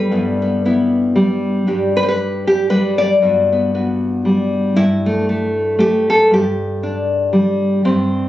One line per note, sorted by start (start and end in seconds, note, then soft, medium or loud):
0.00 0.11 G2 medium
0.00 1.15 G3 medium
0.00 0.11 B3 soft
0.00 0.10 E4 soft
0.00 1.43 B4 medium
0.11 1.67 G2 medium
0.11 0.42 B3 soft
0.11 0.64 E4 soft
0.42 0.65 B3 soft
0.65 1.67 B3 soft
0.65 1.65 E4 soft
1.16 2.69 G3 medium
1.67 3.21 G2 medium
1.67 3.22 D4 soft
1.67 2.46 G4 soft
1.97 2.03 B4 medium
2.03 2.08 C5 medium
2.09 2.47 B4 medium
2.47 2.70 G4 medium
2.70 4.24 G3 medium
2.70 2.98 B4 medium
2.98 4.53 D5 loud
3.22 4.75 G2 medium
3.22 3.51 B3 soft
3.22 3.74 F#4 soft
3.52 3.73 B3 soft
3.75 4.77 B3 soft
3.75 4.74 F#4 soft
4.25 4.76 G3 medium
4.76 6.30 G2 medium
4.76 6.08 E4 medium
5.06 5.28 A3 soft
5.29 5.77 A3 soft
5.79 6.28 A3 medium
5.79 6.09 G4 medium
6.10 6.32 A4 loud
6.31 7.83 G2 medium
6.31 7.87 G4 medium
6.83 7.86 D4 soft
7.33 7.85 G3 medium
7.85 8.29 G2 medium
7.85 8.29 C4 medium